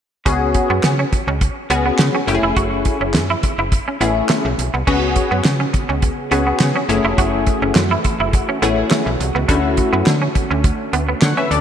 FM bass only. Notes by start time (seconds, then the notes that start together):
0.26 C#2
0.70 F#2
0.84 C#3
1.28 C#2
1.70 C#2
1.99 C#3
2.28 F#1
2.43 F1
2.57 F#1
3.01 F#1
3.14 F#2
3.58 F#1
4.01 A1
4.45 B1
4.59 B1
4.74 C2
4.87 C#2
5.31 F#2
5.45 C#3
5.89 C#2
6.32 C#2
6.60 C#3
6.89 F#1
7.04 F1
7.18 F#1
7.62 F#1
7.76 F#2
8.20 F#1
8.62 A1
9.06 B1
9.20 C2
9.35 C#2
9.49 D2
9.93 F#2
10.07 D3
10.51 D2
10.93 D2
11.22 D3
11.51 D2